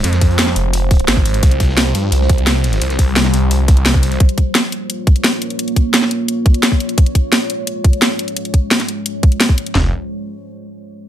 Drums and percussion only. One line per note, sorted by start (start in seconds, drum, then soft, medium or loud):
0.04 closed hi-hat medium
0.04 closed hi-hat loud
0.13 snare medium
0.13 closed hi-hat soft
0.21 kick medium
0.21 closed hi-hat medium
0.31 closed hi-hat soft
0.38 snare loud
0.38 closed hi-hat medium
0.47 snare soft
0.56 closed hi-hat medium
0.73 closed hi-hat loud
0.73 closed hi-hat medium
0.91 kick loud
0.91 closed hi-hat medium
1.00 closed hi-hat soft
1.08 snare loud
1.08 closed hi-hat medium
1.17 kick medium
1.25 closed hi-hat medium
1.34 closed hi-hat soft
1.43 kick loud
1.43 closed hi-hat medium
1.51 closed hi-hat soft
1.60 kick medium
1.60 snare soft
1.60 closed hi-hat medium
1.69 snare soft
1.77 snare loud
1.77 closed hi-hat medium
1.95 closed hi-hat medium
2.12 closed hi-hat loud
2.12 closed hi-hat medium
2.22 snare soft
2.29 kick loud
2.29 closed hi-hat medium
2.38 closed hi-hat soft
2.46 snare loud
2.46 closed hi-hat medium
2.64 closed hi-hat medium
2.64 open hi-hat medium
2.73 snare soft
2.73 closed hi-hat soft
2.82 closed hi-hat medium
2.90 snare medium
2.90 closed hi-hat soft
2.99 kick medium
2.99 closed hi-hat medium
3.08 closed hi-hat soft
3.16 snare loud
3.16 closed hi-hat medium
3.25 snare soft
3.34 closed hi-hat medium
3.51 closed hi-hat medium
3.68 kick loud
3.68 closed hi-hat medium
3.77 closed hi-hat soft
3.86 snare loud
3.86 closed hi-hat medium
3.94 kick medium
4.03 closed hi-hat medium
4.12 closed hi-hat soft
4.20 kick loud
4.20 closed hi-hat medium
4.29 closed hi-hat soft
4.38 kick medium
4.38 closed hi-hat medium
4.55 snare loud
4.55 closed hi-hat medium
4.72 closed hi-hat medium
4.90 closed hi-hat medium
5.07 kick loud
5.07 closed hi-hat medium
5.16 closed hi-hat soft
5.24 snare loud
5.24 closed hi-hat medium
5.42 closed hi-hat medium
5.50 closed hi-hat soft
5.59 closed hi-hat medium
5.68 closed hi-hat soft
5.76 kick medium
5.76 closed hi-hat medium
5.94 snare loud
5.94 closed hi-hat medium
6.02 snare soft
6.11 closed hi-hat medium
6.28 closed hi-hat medium
6.46 kick loud
6.46 closed hi-hat medium
6.54 closed hi-hat soft
6.63 snare loud
6.63 closed hi-hat medium
6.72 kick medium
6.80 closed hi-hat medium
6.89 closed hi-hat soft
6.98 kick loud
6.98 closed hi-hat medium
7.06 closed hi-hat soft
7.15 kick medium
7.15 closed hi-hat medium
7.32 snare loud
7.32 closed hi-hat medium
7.50 closed hi-hat medium
7.67 closed hi-hat medium
7.84 kick loud
7.84 closed hi-hat medium
7.93 closed hi-hat soft
8.02 snare loud
8.02 closed hi-hat medium
8.19 closed hi-hat medium
8.28 closed hi-hat soft
8.37 closed hi-hat medium
8.45 closed hi-hat soft
8.54 kick medium
8.54 closed hi-hat medium
8.71 snare loud
8.71 closed hi-hat medium
8.80 snare soft
8.80 closed hi-hat soft
8.88 closed hi-hat medium
9.06 closed hi-hat medium
9.23 kick loud
9.23 closed hi-hat medium
9.32 closed hi-hat soft
9.40 snare loud
9.40 closed hi-hat medium
9.49 kick medium
9.58 closed hi-hat medium
9.66 closed hi-hat soft
9.75 snare loud
9.75 clap medium
9.75 floor tom loud